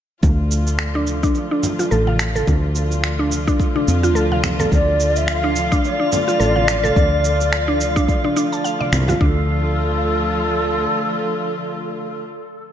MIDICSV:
0, 0, Header, 1, 7, 480
1, 0, Start_track
1, 0, Key_signature, -1, "minor"
1, 0, Tempo, 560748
1, 199, Time_signature, 4, 2, 24, 8
1, 10891, End_track
2, 0, Start_track
2, 0, Title_t, "Synth texture"
2, 0, Program_c, 0, 99
2, 4040, Note_on_c, 0, 77, 86
2, 7891, Note_off_c, 0, 77, 0
2, 10891, End_track
3, 0, Start_track
3, 0, Title_t, "Ney"
3, 0, Program_c, 1, 77
3, 4041, Note_on_c, 1, 74, 104
3, 4426, Note_on_c, 1, 76, 89
3, 4439, Note_off_c, 1, 74, 0
3, 4534, Note_on_c, 1, 77, 99
3, 4547, Note_off_c, 1, 76, 0
3, 5007, Note_off_c, 1, 77, 0
3, 5018, Note_on_c, 1, 74, 106
3, 7374, Note_off_c, 1, 74, 0
3, 7881, Note_on_c, 1, 69, 99
3, 10451, Note_off_c, 1, 69, 0
3, 10891, End_track
4, 0, Start_track
4, 0, Title_t, "Synth pluck"
4, 0, Program_c, 2, 84
4, 815, Note_on_c, 2, 62, 74
4, 913, Note_off_c, 2, 62, 0
4, 1055, Note_on_c, 2, 62, 102
4, 1153, Note_off_c, 2, 62, 0
4, 1295, Note_on_c, 2, 62, 74
4, 1522, Note_off_c, 2, 62, 0
4, 1534, Note_on_c, 2, 65, 74
4, 1633, Note_off_c, 2, 65, 0
4, 1636, Note_on_c, 2, 69, 79
4, 1762, Note_off_c, 2, 69, 0
4, 1774, Note_on_c, 2, 77, 70
4, 1873, Note_off_c, 2, 77, 0
4, 2016, Note_on_c, 2, 69, 88
4, 2114, Note_off_c, 2, 69, 0
4, 2733, Note_on_c, 2, 62, 79
4, 2832, Note_off_c, 2, 62, 0
4, 2975, Note_on_c, 2, 62, 108
4, 3073, Note_off_c, 2, 62, 0
4, 3216, Note_on_c, 2, 62, 76
4, 3443, Note_off_c, 2, 62, 0
4, 3453, Note_on_c, 2, 65, 78
4, 3552, Note_off_c, 2, 65, 0
4, 3554, Note_on_c, 2, 69, 77
4, 3681, Note_off_c, 2, 69, 0
4, 3696, Note_on_c, 2, 77, 72
4, 3794, Note_off_c, 2, 77, 0
4, 3934, Note_on_c, 2, 69, 100
4, 4033, Note_off_c, 2, 69, 0
4, 4655, Note_on_c, 2, 62, 73
4, 4753, Note_off_c, 2, 62, 0
4, 4894, Note_on_c, 2, 62, 105
4, 4993, Note_off_c, 2, 62, 0
4, 5133, Note_on_c, 2, 62, 72
4, 5361, Note_off_c, 2, 62, 0
4, 5373, Note_on_c, 2, 65, 72
4, 5472, Note_off_c, 2, 65, 0
4, 5475, Note_on_c, 2, 69, 79
4, 5601, Note_off_c, 2, 69, 0
4, 5613, Note_on_c, 2, 77, 72
4, 5712, Note_off_c, 2, 77, 0
4, 5851, Note_on_c, 2, 69, 96
4, 5951, Note_off_c, 2, 69, 0
4, 6574, Note_on_c, 2, 62, 82
4, 6673, Note_off_c, 2, 62, 0
4, 6814, Note_on_c, 2, 62, 105
4, 6913, Note_off_c, 2, 62, 0
4, 7058, Note_on_c, 2, 62, 75
4, 7150, Note_off_c, 2, 62, 0
4, 7160, Note_on_c, 2, 62, 81
4, 7238, Note_off_c, 2, 62, 0
4, 7298, Note_on_c, 2, 81, 75
4, 7395, Note_off_c, 2, 81, 0
4, 7399, Note_on_c, 2, 77, 78
4, 7523, Note_off_c, 2, 77, 0
4, 7538, Note_on_c, 2, 74, 73
4, 7596, Note_off_c, 2, 74, 0
4, 7779, Note_on_c, 2, 65, 67
4, 7875, Note_off_c, 2, 65, 0
4, 7881, Note_on_c, 2, 62, 85
4, 8103, Note_off_c, 2, 62, 0
4, 10891, End_track
5, 0, Start_track
5, 0, Title_t, "String section"
5, 0, Program_c, 3, 48
5, 207, Note_on_c, 3, 50, 75
5, 208, Note_on_c, 3, 53, 64
5, 208, Note_on_c, 3, 65, 81
5, 211, Note_on_c, 3, 57, 66
5, 7849, Note_off_c, 3, 50, 0
5, 7849, Note_off_c, 3, 65, 0
5, 7850, Note_off_c, 3, 53, 0
5, 7851, Note_off_c, 3, 57, 0
5, 7888, Note_on_c, 3, 53, 72
5, 7888, Note_on_c, 3, 57, 69
5, 7889, Note_on_c, 3, 65, 82
5, 7891, Note_on_c, 3, 50, 76
5, 10454, Note_off_c, 3, 53, 0
5, 10454, Note_off_c, 3, 57, 0
5, 10455, Note_off_c, 3, 65, 0
5, 10456, Note_off_c, 3, 50, 0
5, 10891, End_track
6, 0, Start_track
6, 0, Title_t, "Fretless electric bass"
6, 0, Program_c, 4, 35
6, 197, Note_on_c, 4, 38, 83
6, 1106, Note_off_c, 4, 38, 0
6, 1641, Note_on_c, 4, 33, 72
6, 2068, Note_off_c, 4, 33, 0
6, 2120, Note_on_c, 4, 38, 92
6, 3027, Note_off_c, 4, 38, 0
6, 3322, Note_on_c, 4, 41, 79
6, 3561, Note_off_c, 4, 41, 0
6, 3561, Note_on_c, 4, 38, 83
6, 3987, Note_off_c, 4, 38, 0
6, 4040, Note_on_c, 4, 38, 82
6, 4947, Note_off_c, 4, 38, 0
6, 5480, Note_on_c, 4, 33, 70
6, 5907, Note_off_c, 4, 33, 0
6, 5960, Note_on_c, 4, 38, 84
6, 6867, Note_off_c, 4, 38, 0
6, 7640, Note_on_c, 4, 36, 90
6, 7814, Note_off_c, 4, 36, 0
6, 7884, Note_on_c, 4, 38, 82
6, 9287, Note_off_c, 4, 38, 0
6, 10891, End_track
7, 0, Start_track
7, 0, Title_t, "Drums"
7, 194, Note_on_c, 9, 64, 80
7, 198, Note_on_c, 9, 36, 100
7, 198, Note_on_c, 9, 69, 29
7, 280, Note_off_c, 9, 64, 0
7, 283, Note_off_c, 9, 36, 0
7, 284, Note_off_c, 9, 69, 0
7, 440, Note_on_c, 9, 69, 70
7, 525, Note_off_c, 9, 69, 0
7, 574, Note_on_c, 9, 69, 38
7, 660, Note_off_c, 9, 69, 0
7, 674, Note_on_c, 9, 26, 70
7, 676, Note_on_c, 9, 69, 28
7, 759, Note_off_c, 9, 26, 0
7, 762, Note_off_c, 9, 69, 0
7, 812, Note_on_c, 9, 60, 37
7, 898, Note_off_c, 9, 60, 0
7, 915, Note_on_c, 9, 63, 36
7, 916, Note_on_c, 9, 69, 74
7, 1000, Note_off_c, 9, 63, 0
7, 1001, Note_off_c, 9, 69, 0
7, 1055, Note_on_c, 9, 69, 40
7, 1056, Note_on_c, 9, 36, 102
7, 1141, Note_off_c, 9, 69, 0
7, 1142, Note_off_c, 9, 36, 0
7, 1153, Note_on_c, 9, 60, 47
7, 1154, Note_on_c, 9, 69, 31
7, 1239, Note_off_c, 9, 60, 0
7, 1240, Note_off_c, 9, 69, 0
7, 1398, Note_on_c, 9, 64, 76
7, 1398, Note_on_c, 9, 69, 67
7, 1483, Note_off_c, 9, 64, 0
7, 1484, Note_off_c, 9, 69, 0
7, 1536, Note_on_c, 9, 69, 40
7, 1537, Note_on_c, 9, 60, 57
7, 1621, Note_off_c, 9, 69, 0
7, 1623, Note_off_c, 9, 60, 0
7, 1640, Note_on_c, 9, 69, 29
7, 1725, Note_off_c, 9, 69, 0
7, 1773, Note_on_c, 9, 63, 58
7, 1858, Note_off_c, 9, 63, 0
7, 1878, Note_on_c, 9, 26, 76
7, 1880, Note_on_c, 9, 69, 72
7, 1963, Note_off_c, 9, 26, 0
7, 1965, Note_off_c, 9, 69, 0
7, 2018, Note_on_c, 9, 69, 41
7, 2019, Note_on_c, 9, 63, 60
7, 2104, Note_off_c, 9, 69, 0
7, 2105, Note_off_c, 9, 63, 0
7, 2119, Note_on_c, 9, 36, 108
7, 2120, Note_on_c, 9, 69, 32
7, 2124, Note_on_c, 9, 64, 83
7, 2204, Note_off_c, 9, 36, 0
7, 2205, Note_off_c, 9, 69, 0
7, 2209, Note_off_c, 9, 64, 0
7, 2357, Note_on_c, 9, 69, 79
7, 2443, Note_off_c, 9, 69, 0
7, 2491, Note_on_c, 9, 60, 32
7, 2497, Note_on_c, 9, 69, 42
7, 2576, Note_off_c, 9, 60, 0
7, 2582, Note_off_c, 9, 69, 0
7, 2599, Note_on_c, 9, 26, 71
7, 2602, Note_on_c, 9, 69, 30
7, 2685, Note_off_c, 9, 26, 0
7, 2687, Note_off_c, 9, 69, 0
7, 2840, Note_on_c, 9, 69, 81
7, 2842, Note_on_c, 9, 63, 36
7, 2926, Note_off_c, 9, 69, 0
7, 2928, Note_off_c, 9, 63, 0
7, 2976, Note_on_c, 9, 36, 98
7, 2977, Note_on_c, 9, 69, 43
7, 3062, Note_off_c, 9, 36, 0
7, 3063, Note_off_c, 9, 69, 0
7, 3078, Note_on_c, 9, 36, 95
7, 3082, Note_on_c, 9, 69, 32
7, 3164, Note_off_c, 9, 36, 0
7, 3167, Note_off_c, 9, 69, 0
7, 3216, Note_on_c, 9, 63, 58
7, 3301, Note_off_c, 9, 63, 0
7, 3320, Note_on_c, 9, 69, 76
7, 3406, Note_off_c, 9, 69, 0
7, 3456, Note_on_c, 9, 69, 47
7, 3542, Note_off_c, 9, 69, 0
7, 3560, Note_on_c, 9, 69, 30
7, 3646, Note_off_c, 9, 69, 0
7, 3695, Note_on_c, 9, 63, 67
7, 3781, Note_off_c, 9, 63, 0
7, 3797, Note_on_c, 9, 64, 88
7, 3798, Note_on_c, 9, 26, 77
7, 3798, Note_on_c, 9, 63, 65
7, 3800, Note_on_c, 9, 69, 72
7, 3883, Note_off_c, 9, 26, 0
7, 3883, Note_off_c, 9, 63, 0
7, 3883, Note_off_c, 9, 64, 0
7, 3886, Note_off_c, 9, 69, 0
7, 3933, Note_on_c, 9, 64, 92
7, 3938, Note_on_c, 9, 63, 68
7, 3938, Note_on_c, 9, 69, 41
7, 4018, Note_off_c, 9, 64, 0
7, 4023, Note_off_c, 9, 63, 0
7, 4023, Note_off_c, 9, 69, 0
7, 4039, Note_on_c, 9, 36, 118
7, 4042, Note_on_c, 9, 69, 31
7, 4044, Note_on_c, 9, 64, 86
7, 4125, Note_off_c, 9, 36, 0
7, 4128, Note_off_c, 9, 69, 0
7, 4129, Note_off_c, 9, 64, 0
7, 4281, Note_on_c, 9, 69, 76
7, 4367, Note_off_c, 9, 69, 0
7, 4417, Note_on_c, 9, 69, 44
7, 4503, Note_off_c, 9, 69, 0
7, 4519, Note_on_c, 9, 26, 71
7, 4522, Note_on_c, 9, 69, 30
7, 4605, Note_off_c, 9, 26, 0
7, 4607, Note_off_c, 9, 69, 0
7, 4663, Note_on_c, 9, 60, 31
7, 4749, Note_off_c, 9, 60, 0
7, 4758, Note_on_c, 9, 63, 35
7, 4758, Note_on_c, 9, 69, 79
7, 4844, Note_off_c, 9, 63, 0
7, 4844, Note_off_c, 9, 69, 0
7, 4898, Note_on_c, 9, 36, 104
7, 4898, Note_on_c, 9, 69, 45
7, 4983, Note_off_c, 9, 36, 0
7, 4984, Note_off_c, 9, 69, 0
7, 5003, Note_on_c, 9, 69, 32
7, 5004, Note_on_c, 9, 60, 52
7, 5089, Note_off_c, 9, 69, 0
7, 5090, Note_off_c, 9, 60, 0
7, 5242, Note_on_c, 9, 69, 72
7, 5244, Note_on_c, 9, 64, 80
7, 5327, Note_off_c, 9, 69, 0
7, 5330, Note_off_c, 9, 64, 0
7, 5379, Note_on_c, 9, 60, 60
7, 5379, Note_on_c, 9, 69, 46
7, 5464, Note_off_c, 9, 69, 0
7, 5465, Note_off_c, 9, 60, 0
7, 5482, Note_on_c, 9, 69, 32
7, 5568, Note_off_c, 9, 69, 0
7, 5621, Note_on_c, 9, 63, 69
7, 5707, Note_off_c, 9, 63, 0
7, 5719, Note_on_c, 9, 26, 77
7, 5722, Note_on_c, 9, 69, 81
7, 5805, Note_off_c, 9, 26, 0
7, 5807, Note_off_c, 9, 69, 0
7, 5860, Note_on_c, 9, 69, 46
7, 5861, Note_on_c, 9, 63, 67
7, 5946, Note_off_c, 9, 63, 0
7, 5946, Note_off_c, 9, 69, 0
7, 5960, Note_on_c, 9, 36, 110
7, 5961, Note_on_c, 9, 64, 76
7, 5963, Note_on_c, 9, 69, 33
7, 6046, Note_off_c, 9, 36, 0
7, 6046, Note_off_c, 9, 64, 0
7, 6048, Note_off_c, 9, 69, 0
7, 6202, Note_on_c, 9, 69, 79
7, 6288, Note_off_c, 9, 69, 0
7, 6337, Note_on_c, 9, 60, 34
7, 6341, Note_on_c, 9, 69, 41
7, 6423, Note_off_c, 9, 60, 0
7, 6427, Note_off_c, 9, 69, 0
7, 6442, Note_on_c, 9, 26, 68
7, 6444, Note_on_c, 9, 69, 30
7, 6528, Note_off_c, 9, 26, 0
7, 6530, Note_off_c, 9, 69, 0
7, 6683, Note_on_c, 9, 69, 83
7, 6691, Note_on_c, 9, 63, 33
7, 6768, Note_off_c, 9, 69, 0
7, 6776, Note_off_c, 9, 63, 0
7, 6818, Note_on_c, 9, 36, 103
7, 6820, Note_on_c, 9, 69, 45
7, 6904, Note_off_c, 9, 36, 0
7, 6905, Note_off_c, 9, 69, 0
7, 6921, Note_on_c, 9, 36, 98
7, 6923, Note_on_c, 9, 69, 33
7, 7006, Note_off_c, 9, 36, 0
7, 7008, Note_off_c, 9, 69, 0
7, 7055, Note_on_c, 9, 63, 55
7, 7140, Note_off_c, 9, 63, 0
7, 7163, Note_on_c, 9, 69, 76
7, 7249, Note_off_c, 9, 69, 0
7, 7300, Note_on_c, 9, 69, 45
7, 7385, Note_off_c, 9, 69, 0
7, 7405, Note_on_c, 9, 69, 32
7, 7490, Note_off_c, 9, 69, 0
7, 7541, Note_on_c, 9, 63, 64
7, 7626, Note_off_c, 9, 63, 0
7, 7642, Note_on_c, 9, 26, 74
7, 7642, Note_on_c, 9, 64, 81
7, 7644, Note_on_c, 9, 63, 55
7, 7644, Note_on_c, 9, 69, 77
7, 7727, Note_off_c, 9, 26, 0
7, 7727, Note_off_c, 9, 64, 0
7, 7729, Note_off_c, 9, 63, 0
7, 7730, Note_off_c, 9, 69, 0
7, 7772, Note_on_c, 9, 63, 68
7, 7774, Note_on_c, 9, 64, 96
7, 7782, Note_on_c, 9, 69, 42
7, 7858, Note_off_c, 9, 63, 0
7, 7860, Note_off_c, 9, 64, 0
7, 7868, Note_off_c, 9, 69, 0
7, 7882, Note_on_c, 9, 36, 112
7, 7968, Note_off_c, 9, 36, 0
7, 10891, End_track
0, 0, End_of_file